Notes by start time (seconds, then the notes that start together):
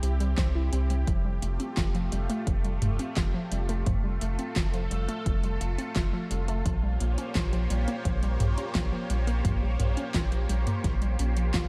Already playing: C4 E4 G4
0.03 C2 G4, closed hi-hat
0.20 G3, closed hi-hat
0.38 C2 C5, kick, snare, clap, closed hi-hat
0.55 E4
0.73 C2 C4, closed hi-hat
0.90 G3, closed hi-hat
1.07 F1 F3 A3 F4, kick, closed hi-hat
1.25 G3
1.42 F1 A3, closed hi-hat
1.60 C4, closed hi-hat
1.77 F1 F4, kick, snare, clap, closed hi-hat
1.95 F3, closed hi-hat
2.12 F1 G3, closed hi-hat
2.30 A3, closed hi-hat
2.47 F1 F3, kick, closed hi-hat
2.64 G3, closed hi-hat
2.82 F1 A3, closed hi-hat, mid tom
2.99 C4, closed hi-hat
3.17 F1 F4, kick, snare, clap, closed hi-hat
3.34 F3
3.52 F1 G3, closed hi-hat
3.69 A3, closed hi-hat
3.86 F1 F3 A4, kick, closed hi-hat, mid tom
4.04 G3
4.21 F1 A3, closed hi-hat
4.39 C4, closed hi-hat
4.56 F1 F4, kick, snare, clap, closed hi-hat
4.74 F3, closed hi-hat
4.91 F1 G3, closed hi-hat
5.09 A3, closed hi-hat
5.26 F1 F3, kick, closed hi-hat
5.43 G3, closed hi-hat
5.61 F1 A3, closed hi-hat
5.78 C4, closed hi-hat
5.96 F1 F4, kick, snare, clap, closed hi-hat
6.13 F3
6.31 F1 G3, closed hi-hat
6.48 A3, closed hi-hat
6.66 A#1 F3 A#3 G4 C5 C#5, kick, closed hi-hat
6.83 G3
7.00 A#1 A#3, closed hi-hat
7.18 C#4, closed hi-hat
7.35 A#1 F4, kick, snare, clap, closed hi-hat
7.53 F3, closed hi-hat
7.70 A#1 G3, closed hi-hat
7.88 A#3, closed hi-hat
8.05 A#1 F3, kick, closed hi-hat
8.23 G3, closed hi-hat
8.40 A#1 A#3, closed hi-hat, mid tom
8.58 C#4, closed hi-hat
8.75 A#1 F4, kick, snare, clap, closed hi-hat
8.92 F3
9.10 A#1 G3, closed hi-hat
9.27 A#3, closed hi-hat
9.45 A#1 F3, kick, closed hi-hat, mid tom
9.62 G3
9.80 A#1 A#3, closed hi-hat, mid tom
9.97 C#4, closed hi-hat
10.14 A#1 F4, kick, snare, clap, closed hi-hat
10.32 F3, closed hi-hat
10.49 A#1 G3, closed hi-hat
10.67 A#3, closed hi-hat, mid tom
10.84 A#1 F3, kick, snare, closed hi-hat
11.02 G3, closed hi-hat
11.19 A#1 C#4, closed hi-hat
11.37 F3, closed hi-hat
11.54 A#1 F4, kick, snare, clap, closed hi-hat